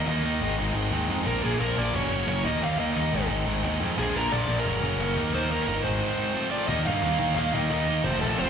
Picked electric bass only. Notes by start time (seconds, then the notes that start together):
0.07 D#2
0.24 D#2
0.41 G#1
0.58 G#1
0.74 G#1
0.91 D#2
1.08 F2
1.27 A#1
1.44 A#1
1.60 A#1
1.77 A#1
1.94 F#1
2.10 F#1
2.27 F#1
2.45 D#2
2.61 D#2
2.79 D#2
2.96 D#2
3.13 G#1
3.30 G#1
3.47 G#1
3.64 D#2
3.81 F2
3.98 A#1
4.15 A#1
4.33 A#1
4.49 A#1
4.66 F#1
4.82 F#1
4.99 F#1
5.17 D#2
5.34 D#2
5.50 D#2
5.67 G1
5.84 G#1
6.69 D#2
6.86 G2
7.03 D#2
7.19 D#2
7.36 D#2
7.54 D#2
7.70 D#2
8.05 F1
8.22 A#1
8.39 F1